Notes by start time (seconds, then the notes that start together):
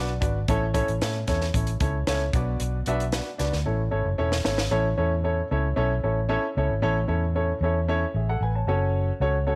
Already playing: B1 D4 F#4 B4 D5
0.21 G#1 D4 F#4 B4 D5, kick, closed hi-hat
0.48 A1 A2 C#4 E4 A4 C#5, kick, closed hi-hat
0.74 C#4 E4 A4 C#5, kick, closed hi-hat
0.88 A1, closed hi-hat
1.01 A2 C#4 E4 A4 C#5, snare, closed hi-hat
1.27 E2 C#4 E4 A4 C#5, kick, snare, closed hi-hat
1.41 snare
1.54 A1 C#4 E4 A4 C#5, kick, closed hi-hat
1.67 closed hi-hat
1.80 C#2 C#4 E4 A4 C#5, kick, closed hi-hat
2.07 C#2 C#4 E4 A4 C#5, snare, closed hi-hat
2.33 B1 B2 D4 F#4 B4 D5, kick, closed hi-hat
2.60 B1, closed hi-hat
2.86 B1 D4 F#4 B4 E5, closed hi-hat
3.00 closed hi-hat
3.12 D4 F#4 B4 D5, snare, closed hi-hat
3.38 C#2 D4 F#4 B4 D5, snare, closed hi-hat
3.53 D2, snare
3.66 A1 A2 C#4 E4 A4 C#5
3.91 G#1 C#4 E4 A4 C#5
4.05 F#1
4.18 E1 C#4 E4 A4 C#5
4.32 snare
4.44 G#1 C#4 E4 A4 C#5, snare
4.58 snare
4.71 A1 A2 C#4 E4 A4 C#5
4.97 E2 C#4 E4 A4 C#5
5.24 C#4 E4 A4 C#5
5.51 C#2 C#4 E4 A4 C#5
5.76 B1 C#4 E4 A4 C#5
6.03 A1 C#4 E4 A4 C#5
6.29 C#4 E4 A4 C#5
6.57 C#2 C#4 E4 A4 C#5
6.70 G#1
6.82 A1 A2 C#4 E4 A4 C#5
7.08 E2 C#4 E4 A4 C#5
7.35 C#4 E4 A4 C#5
7.61 E2 C#4 E4 A4 C#5
7.88 C#4 E4 A4 C#5
8.14 A1 G#4 E5
8.29 A4 F#5
8.41 A1 B4 G#5
8.55 C#5 A5
8.67 F#1 C#4 F#4 A4 C#5
9.20 C#2 C#4 F#4 A4 C#5
9.47 C#4 F#4 A4 C#5